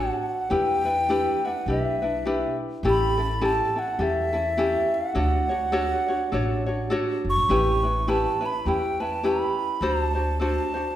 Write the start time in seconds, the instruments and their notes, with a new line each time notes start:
Already playing: ukulele D4 F#4 A4 C#5, flute F#5
0.50 upright bass E2, ukulele D4 E4 G4 B4, flute G5
0.85 ukulele D4 E4 B4
1.09 ukulele D4 E4 G4 B4
1.45 ukulele D4 E4 B4, flute F#5
1.66 upright bass B1, ukulele D4 E4 G4 B4
1.71 flute E5
2.02 ukulele D4 E4 B4
2.25 ukulele D4 E4 G4 B4
2.83 upright bass A1, ukulele C#4 E4 G4 A4
2.89 flute B5
3.18 ukulele C#4 E4 A4
3.41 ukulele C#4 E4 G4 A4, flute A5
3.76 ukulele C#4 E4 A4, flute F#5
3.99 upright bass E2, ukulele C#4 E4 G4 A4, flute E5
4.33 ukulele C#4 E4 A4
4.57 ukulele C#4 E4 G4 A4
4.94 flute F#5
5.15 upright bass D2, ukulele D4 F#4 A4 C#5
5.49 ukulele D4 F#4 C#5
5.72 ukulele D4 F#4 A4 C#5
6.08 ukulele D4 F#4 C#5
6.32 upright bass A1, ukulele D4 F#4 A4 C#5
6.66 ukulele D4 F#4 C#5
6.90 ukulele D4 F#4 A4 C#5
7.24 upright bass F#1
7.30 flute C#6
7.36 upright bass A1
7.49 upright bass A1, ukulele C#4 E4 G4 B4
7.83 ukulele C#4 E4 B4
8.08 ukulele C#4 E4 G4 B4, flute A5
8.41 ukulele C#4 E4 B4
8.46 flute B5
8.65 upright bass E2, ukulele C#4 E4 G4 B4, flute G5
9.00 ukulele C#4 E4 B4, flute A5
9.23 ukulele C#4 E4 G4 B4, flute B5
9.81 upright bass D2, ukulele D4 F#4 A4 C5
9.86 flute A5
10.15 ukulele D4 F#4 C5
10.40 ukulele D4 F#4 A4 C5, flute A5
10.74 ukulele D4 F#4 C5